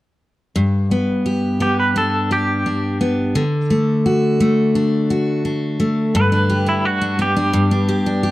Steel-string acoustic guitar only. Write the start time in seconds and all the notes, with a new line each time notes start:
0.56 G2
0.91 B3
1.26 G4
1.60 B3
1.96 D4
2.31 G4
2.66 D4
3.01 B3
3.35 D3
3.70 A3
4.06 F#4
4.40 A3
4.75 D4
5.10 F#4
5.45 D4
5.80 A3
6.15 G2
6.32 D4
6.50 G4
6.66 D4
7.01 D4
7.19 B3
7.37 D4
7.53 G2
7.71 D4
7.89 G4
8.06 D4
8.23 G4